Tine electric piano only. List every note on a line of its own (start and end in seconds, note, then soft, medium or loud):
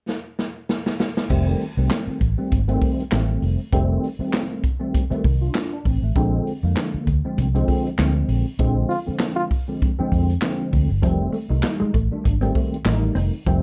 1.30 1.64 D#3 loud
1.30 1.64 G3 loud
1.30 1.64 A3 loud
1.30 1.63 C4 loud
1.77 2.20 D#3 medium
1.77 2.20 G3 medium
1.77 2.20 A3 medium
1.77 2.20 C4 medium
2.38 2.59 D#3 medium
2.38 2.59 G3 medium
2.38 2.59 A3 medium
2.38 2.59 C4 medium
2.68 3.01 D#3 loud
2.68 3.01 G3 medium
2.68 3.01 A3 medium
2.68 3.01 C4 loud
3.12 3.58 D#3 medium
3.12 3.58 G3 medium
3.12 3.58 A3 medium
3.12 3.58 C4 medium
3.73 4.07 D#3 loud
3.73 4.07 G3 loud
3.73 4.07 A3 loud
3.73 4.07 C4 loud
4.20 4.63 D#3 medium
4.20 4.63 G3 medium
4.20 4.63 A3 medium
4.20 4.63 C4 medium
4.80 5.02 D#3 medium
4.80 5.02 G3 medium
4.80 5.02 A3 medium
4.80 5.02 C4 medium
5.10 5.44 D#3 loud
5.10 5.24 G3 medium
5.10 5.25 A3 medium
5.10 5.24 C4 loud
5.41 5.71 D4 medium
5.41 5.71 F4 medium
5.72 5.85 D4 medium
5.86 6.02 A3 medium
5.86 6.02 C4 medium
6.03 6.15 F3 soft
6.03 6.32 A3 medium
6.16 6.50 D3 loud
6.16 6.50 F3 loud
6.16 6.50 G#3 loud
6.16 6.50 C4 loud
6.64 7.07 D3 medium
6.64 7.06 F3 medium
6.64 7.07 G#3 medium
6.64 7.06 A#3 medium
7.25 7.46 D3 medium
7.25 7.46 F3 medium
7.25 7.46 G#3 medium
7.25 7.46 C4 medium
7.54 7.88 D3 loud
7.54 7.88 F3 loud
7.54 7.88 G#3 loud
7.54 7.88 C4 loud
7.98 8.45 D3 medium
7.98 8.44 F3 medium
7.98 8.45 G#3 medium
7.98 8.45 C4 medium
8.59 8.93 D3 loud
8.59 8.93 F3 loud
8.59 8.93 G#3 loud
8.59 8.93 C4 loud
9.06 9.50 D3 medium
9.06 9.50 F3 medium
9.06 9.50 G#3 medium
9.06 9.49 C4 medium
9.68 9.89 D3 medium
9.68 9.89 F3 medium
9.68 9.89 G#3 medium
9.68 9.89 C4 medium
9.99 10.31 D3 medium
9.99 10.32 F3 medium
9.99 10.31 G#3 medium
9.99 10.31 C4 loud
10.43 10.89 D3 medium
10.43 10.89 F3 medium
10.43 10.89 G#3 medium
10.43 10.89 C4 medium
11.02 11.36 D#3 loud
11.02 11.36 G3 loud
11.02 11.36 A3 loud
11.02 11.36 C4 loud
11.50 11.93 D#3 medium
11.50 11.93 G3 medium
11.50 11.93 A3 medium
11.50 11.93 D#4 medium
12.11 12.33 D#3 medium
12.11 12.33 G3 medium
12.11 12.32 A3 medium
12.11 12.33 D4 medium
12.42 12.75 D#3 loud
12.42 12.75 G3 medium
12.42 12.75 A3 medium
12.42 12.75 C4 loud
12.86 13.32 D#3 medium
12.86 13.32 G3 medium
12.86 13.32 A3 medium
12.86 13.32 D#4 medium
13.46 13.62 D#3 loud
13.46 13.62 G3 loud
13.46 13.62 A3 loud
13.46 13.62 C4 loud